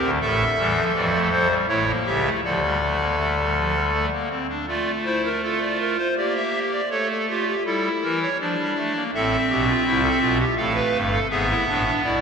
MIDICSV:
0, 0, Header, 1, 2, 480
1, 0, Start_track
1, 0, Key_signature, -1, "minor"
1, 0, Tempo, 744417
1, 140, Time_signature, 3, 2, 24, 8
1, 4463, Tempo, 731707
1, 7933, End_track
2, 0, Start_track
2, 0, Title_t, "Pipe organ"
2, 0, Program_c, 0, 19
2, 0, Note_on_c, 0, 67, 74
2, 0, Note_on_c, 0, 70, 75
2, 15, Note_on_c, 0, 38, 90
2, 16, Note_on_c, 0, 50, 87
2, 69, Note_off_c, 0, 70, 0
2, 70, Note_off_c, 0, 67, 0
2, 119, Note_off_c, 0, 38, 0
2, 120, Note_off_c, 0, 50, 0
2, 135, Note_on_c, 0, 33, 86
2, 135, Note_on_c, 0, 69, 87
2, 138, Note_on_c, 0, 45, 84
2, 139, Note_on_c, 0, 76, 88
2, 140, Note_on_c, 0, 57, 103
2, 282, Note_off_c, 0, 33, 0
2, 284, Note_off_c, 0, 45, 0
2, 285, Note_off_c, 0, 57, 0
2, 373, Note_on_c, 0, 40, 83
2, 373, Note_on_c, 0, 55, 89
2, 374, Note_on_c, 0, 52, 79
2, 475, Note_off_c, 0, 55, 0
2, 487, Note_on_c, 0, 53, 93
2, 520, Note_off_c, 0, 40, 0
2, 520, Note_off_c, 0, 52, 0
2, 544, Note_off_c, 0, 76, 0
2, 591, Note_off_c, 0, 53, 0
2, 611, Note_on_c, 0, 52, 87
2, 612, Note_on_c, 0, 53, 77
2, 613, Note_on_c, 0, 41, 76
2, 613, Note_on_c, 0, 74, 81
2, 713, Note_off_c, 0, 52, 0
2, 730, Note_on_c, 0, 57, 83
2, 760, Note_off_c, 0, 74, 0
2, 832, Note_off_c, 0, 53, 0
2, 833, Note_off_c, 0, 57, 0
2, 845, Note_on_c, 0, 53, 82
2, 847, Note_on_c, 0, 72, 74
2, 950, Note_off_c, 0, 53, 0
2, 953, Note_off_c, 0, 69, 0
2, 966, Note_on_c, 0, 55, 91
2, 996, Note_off_c, 0, 72, 0
2, 1023, Note_off_c, 0, 41, 0
2, 1070, Note_off_c, 0, 55, 0
2, 1083, Note_on_c, 0, 57, 89
2, 1084, Note_on_c, 0, 45, 72
2, 1086, Note_on_c, 0, 64, 76
2, 1086, Note_on_c, 0, 73, 74
2, 1087, Note_on_c, 0, 33, 76
2, 1188, Note_off_c, 0, 57, 0
2, 1207, Note_on_c, 0, 58, 72
2, 1234, Note_off_c, 0, 45, 0
2, 1235, Note_off_c, 0, 64, 0
2, 1236, Note_off_c, 0, 33, 0
2, 1236, Note_off_c, 0, 73, 0
2, 1329, Note_on_c, 0, 49, 76
2, 1330, Note_on_c, 0, 37, 75
2, 1330, Note_on_c, 0, 67, 69
2, 1330, Note_on_c, 0, 76, 71
2, 1357, Note_off_c, 0, 58, 0
2, 1447, Note_on_c, 0, 57, 81
2, 1478, Note_off_c, 0, 49, 0
2, 1479, Note_off_c, 0, 37, 0
2, 1479, Note_off_c, 0, 67, 0
2, 1479, Note_off_c, 0, 76, 0
2, 1551, Note_off_c, 0, 57, 0
2, 1572, Note_on_c, 0, 50, 73
2, 1573, Note_on_c, 0, 38, 75
2, 1574, Note_on_c, 0, 69, 73
2, 1574, Note_on_c, 0, 74, 74
2, 1575, Note_on_c, 0, 53, 75
2, 1677, Note_off_c, 0, 53, 0
2, 1695, Note_on_c, 0, 55, 63
2, 1797, Note_off_c, 0, 55, 0
2, 1818, Note_on_c, 0, 57, 65
2, 1919, Note_off_c, 0, 57, 0
2, 1934, Note_on_c, 0, 58, 66
2, 2038, Note_off_c, 0, 58, 0
2, 2053, Note_on_c, 0, 57, 64
2, 2158, Note_off_c, 0, 57, 0
2, 2177, Note_on_c, 0, 55, 62
2, 2281, Note_off_c, 0, 55, 0
2, 2300, Note_on_c, 0, 53, 60
2, 2404, Note_off_c, 0, 53, 0
2, 2417, Note_on_c, 0, 55, 67
2, 2523, Note_off_c, 0, 55, 0
2, 2536, Note_on_c, 0, 57, 60
2, 2617, Note_off_c, 0, 50, 0
2, 2618, Note_off_c, 0, 38, 0
2, 2618, Note_off_c, 0, 69, 0
2, 2618, Note_off_c, 0, 74, 0
2, 2643, Note_off_c, 0, 57, 0
2, 2656, Note_on_c, 0, 58, 59
2, 2765, Note_off_c, 0, 58, 0
2, 2771, Note_on_c, 0, 60, 60
2, 2882, Note_off_c, 0, 60, 0
2, 2894, Note_on_c, 0, 62, 59
2, 3003, Note_off_c, 0, 62, 0
2, 3013, Note_on_c, 0, 65, 69
2, 3015, Note_on_c, 0, 57, 68
2, 3015, Note_on_c, 0, 74, 84
2, 3166, Note_off_c, 0, 65, 0
2, 3168, Note_off_c, 0, 74, 0
2, 3257, Note_on_c, 0, 64, 68
2, 3257, Note_on_c, 0, 72, 79
2, 3365, Note_off_c, 0, 72, 0
2, 3383, Note_on_c, 0, 70, 75
2, 3409, Note_off_c, 0, 64, 0
2, 3488, Note_off_c, 0, 70, 0
2, 3501, Note_on_c, 0, 65, 68
2, 3501, Note_on_c, 0, 69, 73
2, 3607, Note_off_c, 0, 69, 0
2, 3613, Note_on_c, 0, 74, 78
2, 3722, Note_off_c, 0, 74, 0
2, 3741, Note_on_c, 0, 70, 75
2, 3845, Note_off_c, 0, 57, 0
2, 3846, Note_off_c, 0, 70, 0
2, 3857, Note_on_c, 0, 72, 82
2, 3916, Note_off_c, 0, 65, 0
2, 3964, Note_off_c, 0, 72, 0
2, 3977, Note_on_c, 0, 58, 68
2, 3978, Note_on_c, 0, 74, 84
2, 3980, Note_on_c, 0, 67, 66
2, 4084, Note_off_c, 0, 74, 0
2, 4102, Note_on_c, 0, 76, 70
2, 4251, Note_off_c, 0, 76, 0
2, 4333, Note_on_c, 0, 74, 81
2, 4392, Note_off_c, 0, 58, 0
2, 4394, Note_off_c, 0, 67, 0
2, 4441, Note_off_c, 0, 74, 0
2, 4453, Note_on_c, 0, 69, 75
2, 4454, Note_on_c, 0, 57, 74
2, 4454, Note_on_c, 0, 73, 89
2, 4563, Note_off_c, 0, 73, 0
2, 4570, Note_off_c, 0, 69, 0
2, 4583, Note_on_c, 0, 69, 77
2, 4688, Note_off_c, 0, 69, 0
2, 4703, Note_on_c, 0, 67, 76
2, 4704, Note_on_c, 0, 65, 69
2, 4809, Note_off_c, 0, 67, 0
2, 4822, Note_on_c, 0, 67, 74
2, 4855, Note_off_c, 0, 65, 0
2, 4875, Note_off_c, 0, 57, 0
2, 4929, Note_off_c, 0, 67, 0
2, 4945, Note_on_c, 0, 55, 73
2, 4945, Note_on_c, 0, 69, 82
2, 4947, Note_on_c, 0, 64, 69
2, 5097, Note_off_c, 0, 55, 0
2, 5097, Note_off_c, 0, 69, 0
2, 5190, Note_on_c, 0, 70, 80
2, 5191, Note_on_c, 0, 52, 68
2, 5295, Note_off_c, 0, 70, 0
2, 5316, Note_on_c, 0, 73, 89
2, 5341, Note_off_c, 0, 52, 0
2, 5364, Note_off_c, 0, 64, 0
2, 5418, Note_off_c, 0, 73, 0
2, 5430, Note_on_c, 0, 53, 73
2, 5433, Note_on_c, 0, 62, 73
2, 5433, Note_on_c, 0, 74, 84
2, 5535, Note_off_c, 0, 53, 0
2, 5555, Note_on_c, 0, 55, 63
2, 5658, Note_off_c, 0, 55, 0
2, 5677, Note_on_c, 0, 57, 77
2, 5779, Note_off_c, 0, 57, 0
2, 5795, Note_on_c, 0, 58, 76
2, 5846, Note_off_c, 0, 62, 0
2, 5847, Note_off_c, 0, 74, 0
2, 5898, Note_off_c, 0, 58, 0
2, 5918, Note_on_c, 0, 45, 79
2, 5919, Note_on_c, 0, 60, 86
2, 5920, Note_on_c, 0, 33, 75
2, 5921, Note_on_c, 0, 76, 81
2, 5922, Note_on_c, 0, 69, 94
2, 6064, Note_off_c, 0, 45, 0
2, 6066, Note_off_c, 0, 33, 0
2, 6067, Note_off_c, 0, 69, 0
2, 6151, Note_on_c, 0, 35, 71
2, 6152, Note_on_c, 0, 67, 90
2, 6155, Note_on_c, 0, 47, 81
2, 6254, Note_off_c, 0, 67, 0
2, 6274, Note_on_c, 0, 65, 94
2, 6298, Note_off_c, 0, 35, 0
2, 6301, Note_off_c, 0, 47, 0
2, 6374, Note_off_c, 0, 65, 0
2, 6388, Note_on_c, 0, 48, 78
2, 6389, Note_on_c, 0, 64, 88
2, 6390, Note_on_c, 0, 36, 82
2, 6491, Note_off_c, 0, 64, 0
2, 6504, Note_on_c, 0, 69, 94
2, 6535, Note_off_c, 0, 48, 0
2, 6536, Note_off_c, 0, 36, 0
2, 6607, Note_off_c, 0, 69, 0
2, 6621, Note_on_c, 0, 35, 77
2, 6622, Note_on_c, 0, 65, 97
2, 6625, Note_on_c, 0, 47, 76
2, 6725, Note_off_c, 0, 65, 0
2, 6734, Note_off_c, 0, 60, 0
2, 6734, Note_on_c, 0, 67, 89
2, 6735, Note_off_c, 0, 76, 0
2, 6770, Note_off_c, 0, 35, 0
2, 6772, Note_off_c, 0, 47, 0
2, 6841, Note_off_c, 0, 67, 0
2, 6851, Note_on_c, 0, 69, 86
2, 6852, Note_on_c, 0, 57, 75
2, 6852, Note_on_c, 0, 77, 75
2, 6853, Note_on_c, 0, 33, 79
2, 6856, Note_on_c, 0, 45, 76
2, 6959, Note_off_c, 0, 69, 0
2, 6970, Note_on_c, 0, 71, 83
2, 7004, Note_off_c, 0, 33, 0
2, 7006, Note_off_c, 0, 45, 0
2, 7098, Note_on_c, 0, 43, 77
2, 7099, Note_on_c, 0, 31, 75
2, 7122, Note_off_c, 0, 71, 0
2, 7216, Note_on_c, 0, 69, 86
2, 7248, Note_off_c, 0, 31, 0
2, 7248, Note_off_c, 0, 43, 0
2, 7268, Note_off_c, 0, 57, 0
2, 7268, Note_off_c, 0, 77, 0
2, 7322, Note_off_c, 0, 69, 0
2, 7335, Note_on_c, 0, 44, 82
2, 7336, Note_on_c, 0, 59, 79
2, 7339, Note_on_c, 0, 32, 86
2, 7339, Note_on_c, 0, 68, 98
2, 7339, Note_on_c, 0, 76, 78
2, 7443, Note_off_c, 0, 68, 0
2, 7462, Note_on_c, 0, 64, 84
2, 7486, Note_off_c, 0, 44, 0
2, 7489, Note_off_c, 0, 32, 0
2, 7565, Note_off_c, 0, 64, 0
2, 7580, Note_on_c, 0, 62, 87
2, 7583, Note_on_c, 0, 33, 71
2, 7583, Note_on_c, 0, 45, 73
2, 7684, Note_off_c, 0, 62, 0
2, 7698, Note_on_c, 0, 62, 90
2, 7732, Note_off_c, 0, 33, 0
2, 7732, Note_off_c, 0, 45, 0
2, 7754, Note_off_c, 0, 76, 0
2, 7803, Note_off_c, 0, 62, 0
2, 7819, Note_on_c, 0, 74, 74
2, 7820, Note_on_c, 0, 35, 68
2, 7822, Note_on_c, 0, 47, 72
2, 7822, Note_on_c, 0, 64, 87
2, 7933, Note_off_c, 0, 35, 0
2, 7933, Note_off_c, 0, 47, 0
2, 7933, Note_off_c, 0, 59, 0
2, 7933, Note_off_c, 0, 64, 0
2, 7933, Note_off_c, 0, 74, 0
2, 7933, End_track
0, 0, End_of_file